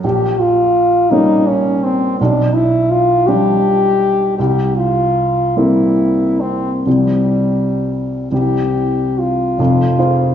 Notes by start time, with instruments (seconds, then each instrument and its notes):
0.04 grand piano A#1, french horn G4
0.39 french horn F4
1.10 grand piano G3 A#3 C#4, french horn D#4
1.47 french horn C#4
1.84 french horn C4
2.19 grand piano B1, french horn D4
2.55 french horn E4
2.91 french horn F4
3.26 grand piano F3 G3 D4, french horn G4
4.39 grand piano C2, french horn G4
4.77 french horn F4
5.57 grand piano G3 A#3 C4, french horn E4
6.41 french horn C4
6.85 grand piano C2 F3 G3 C4, french horn G3
8.31 grand piano C2 E3 G3 C4, french horn G4
9.18 french horn F4
9.58 grand piano F1 F2
9.99 grand piano F4 G#4 C5